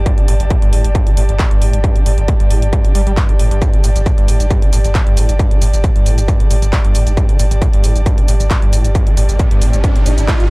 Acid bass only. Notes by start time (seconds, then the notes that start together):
0.06 G2
0.18 D3
0.28 A2
0.40 G1
0.50 A2
0.62 G2
0.73 A2
0.84 G2
0.95 G2
1.07 D3
1.17 A2
1.29 G1
1.39 A2
1.51 G2
1.62 A2
1.73 G2
1.84 G2
1.96 D3
2.06 A2
2.18 G1
2.28 A2
2.40 G2
2.50 A2
2.62 G2
2.73 G2
2.84 D3
2.95 G3
3.07 G3
3.17 G2
3.29 F3
3.39 A2
3.51 G2
3.62 G2
3.73 D3
3.84 A2
3.96 G1
4.06 A2
4.18 G2
4.28 A2
4.40 G2
4.50 G2
4.62 D3
4.73 A2
4.85 G1
4.95 A2
5.07 G2
5.17 A2
5.29 G2
5.39 G2
5.51 D3
5.62 A2
5.73 G1
5.84 A2
5.96 G2
6.06 A2
6.18 G2
6.28 G2
6.40 D3
6.50 A2
6.62 G1
6.73 A2
6.84 G2
6.95 A2
7.07 G2
7.17 G2
7.29 D3
7.39 A2
7.51 G1
7.62 A2
7.73 G2
7.84 A2
7.96 G2
8.06 G2
8.18 D3
8.28 A2
8.40 G1
8.51 A2
8.62 G2
8.73 A2
8.85 G2
8.95 G2
9.07 D3
9.17 A2
9.29 G1
9.39 A2
9.51 G2
9.62 A2
9.73 G2
9.84 G2
9.96 D3
10.06 A2
10.18 G1
10.28 A2
10.40 G2